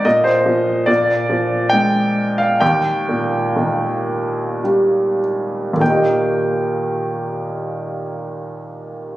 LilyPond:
<<
  \new Staff \with { instrumentName = "Grand piano" } { \time 3/4 \key ees \major \tempo 4 = 56 ees''16 c''8. d''4 g''8. f''16 | g''2 r4 | g''2. | }
  \new Staff \with { instrumentName = "Grand piano" } { \clef bass \time 3/4 \key ees \major bes,8 f8 bes,8 f8 aes4 | ees,8 bes,8 ees4 g4 | <ees, bes, ees bes g' ees''>2. | }
>>